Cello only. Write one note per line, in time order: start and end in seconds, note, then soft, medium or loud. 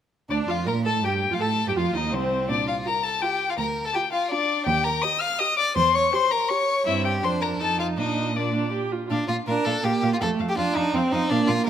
0.30 0.47 D2 medium
0.49 0.69 F2 soft
0.68 0.86 A#2 medium
0.85 1.05 A2 medium
1.03 1.30 G2 medium
1.30 1.39 F2 soft
1.39 1.67 A2 medium
1.67 1.71 G2 medium
1.76 1.94 F2 medium
1.95 2.14 D#2 medium
2.13 2.48 C2 medium
2.49 2.78 A#2 medium
3.58 3.87 D2 medium
4.67 4.96 D#2 medium
5.76 6.05 E2 medium
6.86 7.24 G2 medium
7.22 7.59 F2 soft
7.60 7.99 F2 soft
7.97 8.91 A#2 soft
9.11 9.18 A#2 medium
9.29 9.36 A#2 soft
9.48 9.55 A#2 soft
9.66 9.73 A#2 soft
9.84 9.91 A#2 medium
10.03 10.10 A#2 soft
10.21 10.28 F2 medium
10.40 10.47 F2 soft
10.58 10.65 F2 medium
10.76 10.83 F2 medium
10.94 11.01 F2 medium
11.12 11.20 F2 medium
11.31 11.38 A#2 medium
11.49 11.56 A#2 medium